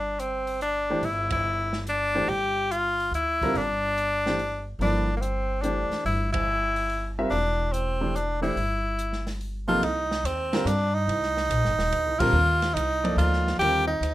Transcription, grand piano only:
0.90 E3 A3 D4 G4 C5
2.14 E3 A3 D4 G4 C5
3.43 D3 G3 C4 F4 A#4
4.26 E3 A3 D4 G4 C5
4.81 F3 A#3 E4 A4 D5
5.63 E3 A3 D4 G4 C5
7.19 G3 C4 F4 A#4 E5
8.01 E3 A3 D4 G4 C5
8.41 E3 A3 D4 G4 C5
9.68 C3 F3 A#3 D#4 A4
10.53 D3 G3 C4 F4 A#4
12.20 D3 G3 C4 F4 A#4
13.04 F3 A#3 D#4 A4 D5
13.61 D3 G3 C4 F4 A#4

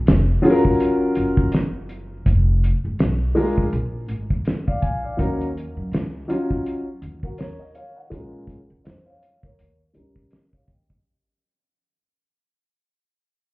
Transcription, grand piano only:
0.42 F#3 C#4 F4 G#4
0.50 A#4
3.35 G#3 D4 F4 A#4
4.67 D5 F5
4.82 F5 G#5
5.03 D5 F5
5.17 F#3 C#4 D#4 A#4
6.28 F#3 C#4 D#4 F4
7.23 F#4 A#4
7.38 A#4 C#5
7.59 D#5
7.74 C#5 F5
7.96 D#5 F#5
8.10 G#3 C#4 F4 A#4
8.84 C5 D#5
9.06 C#5 F5
9.43 A#4 C#5
9.93 G3 C#4 D#4 A#4
10.31 D#5
10.53 C#5 F5
10.69 D#5
10.89 D#5

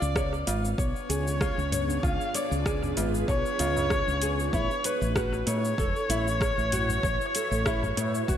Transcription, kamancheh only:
Already playing: D5
0.80 C#5
2.03 F5
2.35 D5
3.29 C#5
4.54 C#5
4.85 B4
5.47 C#5

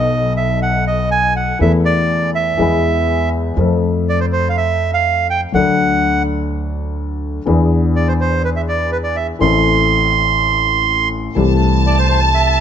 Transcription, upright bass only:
Already playing: B1
1.60 E2
2.59 E2
3.57 F2
5.54 D2
7.47 E2
9.40 A1
11.36 C2

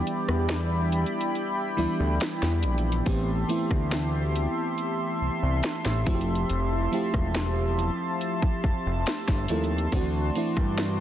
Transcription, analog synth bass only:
0.29 E2
1.78 D2
2.00 D2
2.42 E2
2.64 A#1
3.07 A1
3.71 D2
5.22 C2
5.43 C2
5.86 A1
6.07 F1
6.50 F1
7.14 E1
8.64 F1
8.86 F1
9.28 G1
9.50 D#2
9.93 D2
10.57 G2

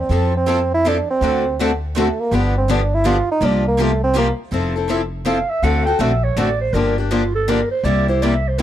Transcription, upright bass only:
0.10 F2
1.21 D2
2.31 G1
3.41 C2
4.52 F1
5.62 D2
5.99 A#1
6.36 A1
6.73 G1
7.84 C2

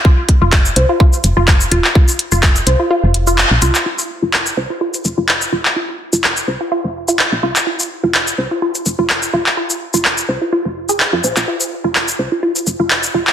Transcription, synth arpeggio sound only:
0.05 F4
0.42 F4
0.76 C5
0.89 F4
1.00 F4
1.37 F4
1.72 F4
1.95 F4
2.32 F4
2.67 C5
2.80 F4
2.91 F4
3.27 F4
3.62 F4
3.86 F4
4.22 F4
4.57 C5
4.70 F4
4.81 F4
5.18 F4
5.52 F4
5.76 F4
6.13 F4
6.48 C5
6.61 F4
6.72 F4
7.08 F4
7.43 F4
7.67 F4
8.04 F4
8.38 C5
8.51 F4
8.62 F4
8.99 F4
9.33 F4
9.57 F4
9.94 F4
10.29 C5
10.42 F4
10.53 F4
10.89 G#4
11.13 F4
11.24 C5
11.37 F4
11.48 F4
11.84 F4
12.19 C5
12.32 F4
12.43 F4
12.80 F4
13.14 F4

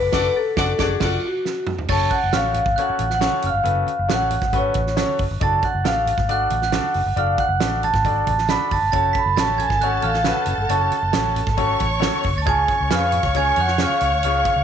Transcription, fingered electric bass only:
0.02 F#1
0.13 F#1
0.57 F#1
0.79 F#1
1.01 F#1
1.89 F#1
2.23 F#1
2.34 A1
2.66 G#1
2.90 muted fingered electric bass stroke
2.99 A1
3.44 F#1
3.53 G1
3.64 F#1
3.99 F#1
4.10 A1
4.42 G#1
4.75 A1
5.19 F#1
5.31 G1
5.41 F#1
5.74 F#1
5.85 A1
6.18 G#1
6.50 A1
6.95 F#1
7.06 G1
7.16 F#1
7.48 F#1
7.61 A1
7.94 G#1
8.27 A1
8.72 F#1
8.82 G1
8.93 F#1
9.26 F#1
9.36 A1
9.70 G#1
10.03 A1
10.46 F#1
10.57 G1
10.70 F#1
11.02 F#1
11.14 A1
11.47 G#1
11.80 A1
12.25 F#1
12.36 D2
12.47 C#2
12.80 C#2
12.91 F2
13.23 C#2
13.57 F2
14.01 C#2
14.11 D2
14.24 C#2
14.56 C#2

